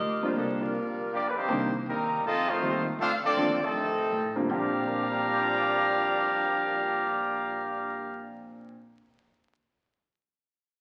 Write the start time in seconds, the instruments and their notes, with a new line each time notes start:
Already playing: saxophone section A#3 F4 G4 D#5
0.00 upright bass D2
0.22 upright piano D3 G3 A#3 C4 F4, saxophone section A3 D4 F4 C5
0.36 upright bass C2, saxophone section F3 A#3 D4 A4
0.61 trombone section F3 G3 A#3, saxophone section G3 D4 F4 A#4
1.12 trombone section F3 G3 D4, trumpet section A#3 F4 G4 D5
1.28 trumpet section B4
1.36 trombone section D#3 G3 C4, trumpet section A#3 D#4 G4 C5
1.48 upright bass C2, upright piano D#3 G3 A#3 C4 D4
1.86 upright bass D#2, trombone section D#3 G3 A#3, trumpet section G3 C4 D#4 A#4
2.24 upright bass F2, trombone section A3 C4 D#4, trumpet section C4 F4 A4 D#5
2.48 trombone section D#3 A3 C4, trumpet section A3 D#4 F4 C5
2.62 upright bass D#2, upright piano D#3 G3 A3 C4 F4
2.99 upright bass D2, trombone section A3 C4 F4, trumpet section D4 A4 C5 F5
3.23 trombone section F3 A3 D4, trumpet section C4 F4 A4 D5, muted upright bass stroke
3.36 upright bass D#2, upright piano D3 F3 A3 C4 F4
3.60 trombone section C3 D#3 A3, trumpet section C4 D#4 A4, muted upright bass stroke
3.74 upright bass F2
4.12 upright bass A2
4.35 upright piano D3 G3 A#3 C4 F4
4.48 upright bass A#1, upright piano A#2 F3 C4 D4 G4, trombone section A#2 F3 G3 D4, trumpet section G4 D5 F5 A#5
4.87 upright piano A#4
4.94 upright piano D5
5.03 upright piano G5
5.12 upright piano A#5
5.22 upright piano D6
5.33 upright piano G6
5.44 upright piano A#6